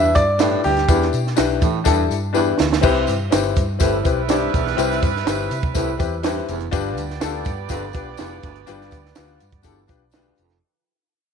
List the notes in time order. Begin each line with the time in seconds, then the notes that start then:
Already playing: E2 G2 D4 E4 G4 B4 E5
0.15 G2 D5, kick, closed hi-hat, tambourine
0.39 A2 D4 E4 G4 B4, snare, closed hi-hat, tambourine
0.64 D2 G2 G4, open hi-hat, tambourine
0.77 snare, closed hi-hat
0.88 E2 D4 E4 G4 B4, kick, closed hi-hat, tambourine
1.02 snare
1.13 B2, closed hi-hat, tambourine
1.27 snare
1.36 B1 D4 E4 G4 B4, snare, closed hi-hat, tambourine
1.61 A2 E3, kick, closed hi-hat, tambourine
1.84 E2 G2 D4 E4 G4 A4, kick, closed hi-hat, tambourine
2.10 G2, closed hi-hat, tambourine
2.33 E2 D4 E4 G4 B4, tambourine
2.59 D2 E2, snare, tambourine
2.73 snare
2.81 C2 C3 C4 E4 G4 B4, kick, crash, tambourine
3.07 G2, closed hi-hat, tambourine
3.30 G1 C4 E4 G4 B4, snare, closed hi-hat, tambourine
3.56 G2, kick, closed hi-hat, tambourine
3.79 G1 A2 G3 C4 E4 G4 B4, kick, closed hi-hat, tambourine
4.03 B1 C4 E4 G4 B4, kick, closed hi-hat, tambourine
4.28 G2 C4 E4 G4 D5, snare, closed hi-hat, tambourine
4.53 B1 E2, kick, closed hi-hat, tambourine
4.67 snare
4.77 C2 C3 C4 E4 G4 B4, closed hi-hat, tambourine
4.91 snare
5.03 G2, kick, closed hi-hat, tambourine
5.16 snare
5.25 G1 C4 E4 G4 B4, snare, closed hi-hat, tambourine
5.51 C3, closed hi-hat, tambourine
5.63 kick
5.74 C2 A2 C4 E4 G4 B4, kick, closed hi-hat, tambourine
5.97 E2 C4 E4 G4 B4, kick, closed hi-hat, tambourine
6.23 G2 C4 E4 G4 B4, snare, closed hi-hat, tambourine
6.48 F1 E2, closed hi-hat, tambourine
6.60 closed hi-hat
6.71 G1 G2 B3 D4 F4 G4 B4 D5, kick, closed hi-hat, tambourine
6.97 D2, closed hi-hat, tambourine
7.10 snare
7.20 D2 D4 F4 G4 A4, snare, closed hi-hat, tambourine
7.45 G2, kick, closed hi-hat, tambourine
7.69 G1 F2 D4 F4 G4 B4, kick, closed hi-hat, tambourine
7.93 B1 D4 F4 G4 B4, kick, closed hi-hat, tambourine
8.17 F1 E2 D4 F4 G4 B4, snare, closed hi-hat, tambourine
8.43 G1 D2, kick, closed hi-hat, tambourine
8.55 closed hi-hat
8.67 G1 G2 D4 F4 G4 B4, closed hi-hat, tambourine
8.81 snare
8.91 D2, kick, closed hi-hat, tambourine
9.06 snare
9.15 D2 D4 F4 G4 B4, snare, closed hi-hat, tambourine
9.40 G2, closed hi-hat, tambourine
9.52 kick, closed hi-hat
9.63 G1 E2 D4 F4 G4 A4, kick, closed hi-hat, tambourine
9.87 B1 D4 F4 G4 B4, kick, closed hi-hat, tambourine
10.11 D2 D4 F4 G4 B4, snare, closed hi-hat, tambourine
10.37 F1 F2, closed hi-hat, tambourine
10.50 snare, closed hi-hat